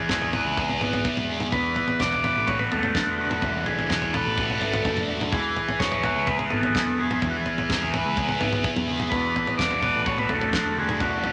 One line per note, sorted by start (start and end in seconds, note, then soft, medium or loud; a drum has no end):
0.00 0.81 E3 medium
0.00 0.81 B3 medium
0.00 0.34 E4 medium
0.00 1.49 E4 medium
0.00 0.30 G#4 medium
0.00 0.34 B4 medium
0.00 9.08 B4 medium
0.00 5.29 D5 medium
0.00 1.49 G#5 medium
0.09 0.40 E1 medium
0.09 0.56 G#4 medium
0.09 kick loud
0.09 snare medium
0.09 mid tom medium
0.21 floor tom medium
0.33 2.24 B4 medium
0.33 floor tom medium
0.45 0.76 C#2 medium
0.57 1.28 G#4 medium
0.57 kick medium
0.57 floor tom medium
0.69 floor tom medium
0.81 1.01 G#1 medium
0.81 2.71 B3 medium
0.81 floor tom medium
0.93 floor tom medium
1.05 1.53 E4 medium
1.05 kick loud
1.05 mid tom medium
1.17 1.48 E1 medium
1.17 mid tom medium
1.29 1.53 G#4 medium
1.40 mid tom medium
1.52 1.73 E1 medium
1.52 2.71 E3 medium
1.52 2.01 B4 loud
1.52 3.41 F#5 medium
1.52 5.28 B5 medium
1.52 kick medium
1.52 floor tom medium
1.76 floor tom medium
1.88 floor tom medium
1.99 2.31 E1 medium
1.99 2.48 F#4 medium
1.99 2.49 D5 loud
1.99 kick loud
1.99 snare medium
1.99 mid tom medium
2.12 floor tom medium
2.24 4.13 B4 medium
2.24 floor tom medium
2.36 2.67 A1 medium
2.47 3.19 F#4 medium
2.47 2.59 C#5 loud
2.47 kick medium
2.47 floor tom medium
2.59 2.65 B4 medium
2.59 floor tom medium
2.72 2.92 E1 loud
2.72 3.90 A3 medium
2.72 2.93 A4 medium
2.72 floor tom medium
2.83 floor tom medium
2.94 4.14 D4 medium
2.94 3.05 A4 medium
2.94 kick loud
2.94 snare medium
3.07 3.38 E1 medium
3.18 3.67 F#4 loud
3.18 3.90 F#4 medium
3.31 mid tom medium
3.42 3.63 E1 medium
3.42 4.61 E3 medium
3.42 5.29 E5 medium
3.42 kick loud
3.42 floor tom medium
3.66 4.15 G#4 medium
3.66 floor tom medium
3.79 floor tom medium
3.90 4.21 E1 medium
3.90 4.37 F#4 medium
3.90 kick loud
3.90 snare medium
3.90 mid tom medium
4.02 floor tom medium
4.13 5.05 A4 medium
4.13 6.03 B4 medium
4.13 floor tom medium
4.25 4.56 A1 medium
4.38 5.07 F#4 medium
4.38 kick loud
4.38 floor tom medium
4.50 floor tom medium
4.60 4.82 G#1 medium
4.60 5.33 A3 medium
4.60 floor tom medium
4.73 floor tom medium
4.85 5.07 F#1 medium
4.85 5.33 D4 medium
4.85 kick loud
4.85 mid tom medium
4.97 mid tom medium
5.08 5.29 E1 medium
5.08 5.32 F#4 medium
5.21 mid tom medium
5.30 5.53 E1 medium
5.30 6.51 E3 medium
5.30 5.81 G#4 medium
5.30 9.06 E5 medium
5.30 9.06 G#5 medium
5.30 10.96 B5 medium
5.30 kick loud
5.30 floor tom medium
5.56 floor tom medium
5.68 floor tom medium
5.68 high conga medium
5.79 6.11 E1 medium
5.79 6.26 G#4 medium
5.79 6.28 C#5 loud
5.79 kick loud
5.79 snare medium
5.79 mid tom medium
5.79 low conga medium
5.92 floor tom medium
5.92 high conga medium
6.03 7.94 B4 medium
6.03 floor tom medium
6.03 low conga medium
6.15 6.46 C#2 medium
6.27 6.97 G#4 medium
6.27 6.38 B4 loud
6.27 kick medium
6.27 floor tom medium
6.39 floor tom medium
6.50 6.71 G#1 loud
6.50 8.40 B3 medium
6.50 7.00 A4 medium
6.50 floor tom medium
6.50 low conga medium
6.63 floor tom medium
6.74 7.93 E4 medium
6.74 kick loud
6.74 snare medium
6.85 7.16 E1 medium
6.85 high conga medium
6.98 7.69 G#4 medium
6.98 7.21 G#4 medium
6.98 low conga medium
7.11 mid tom medium
7.22 7.43 E1 medium
7.22 8.41 E3 medium
7.22 7.29 G#4 medium
7.22 kick medium
7.22 floor tom medium
7.31 7.37 F#4 medium
7.36 7.89 G#4 medium
7.46 floor tom medium
7.58 floor tom medium
7.58 high conga medium
7.69 8.00 E1 medium
7.69 8.17 G#4 medium
7.69 kick loud
7.69 snare medium
7.69 mid tom medium
7.69 low conga medium
7.82 floor tom medium
7.82 high conga medium
7.93 9.82 B4 medium
7.93 floor tom medium
7.93 low conga medium
8.05 8.35 C#2 medium
8.17 8.87 G#4 medium
8.17 kick loud
8.17 floor tom medium
8.29 floor tom medium
8.40 8.61 G#1 loud
8.40 10.30 B3 medium
8.40 floor tom medium
8.40 low conga medium
8.53 floor tom medium
8.64 9.11 E4 medium
8.64 kick loud
8.64 mid tom medium
8.76 9.07 E1 medium
8.76 mid tom medium
8.76 high conga medium
8.88 9.12 G#4 medium
8.88 low conga medium
9.00 mid tom medium
9.10 9.32 E1 medium
9.10 10.29 E3 medium
9.10 9.54 B4 medium
9.10 11.32 D5 medium
9.10 11.32 F#5 medium
9.10 11.32 A5 medium
9.10 kick loud
9.10 floor tom medium
9.36 floor tom medium
9.47 floor tom medium
9.47 high conga medium
9.58 9.90 E1 medium
9.58 10.06 F#4 medium
9.58 10.02 D5 loud
9.58 kick loud
9.58 snare medium
9.58 mid tom medium
9.58 low conga medium
9.69 floor tom medium
9.69 high conga medium
9.81 11.32 B4 medium
9.81 floor tom medium
9.81 low conga medium
9.94 10.25 A1 medium
10.06 10.75 F#4 medium
10.06 10.19 C#5 loud
10.06 kick loud
10.06 floor tom medium
10.18 10.31 B4 medium
10.18 floor tom medium
10.29 10.50 E1 loud
10.29 11.32 A3 medium
10.29 10.78 A4 medium
10.29 floor tom medium
10.29 low conga medium
10.41 floor tom medium
10.53 11.32 D4 medium
10.53 kick loud
10.53 snare medium
10.64 10.96 E1 medium
10.64 high conga medium
10.76 11.32 F#4 medium
10.76 11.00 G#4 medium
10.76 low conga medium
10.89 mid tom medium
10.99 11.21 E1 loud
10.99 11.32 E3 medium
10.99 11.32 F#4 medium
10.99 11.32 C#6 medium
10.99 kick medium
10.99 floor tom medium
11.24 floor tom medium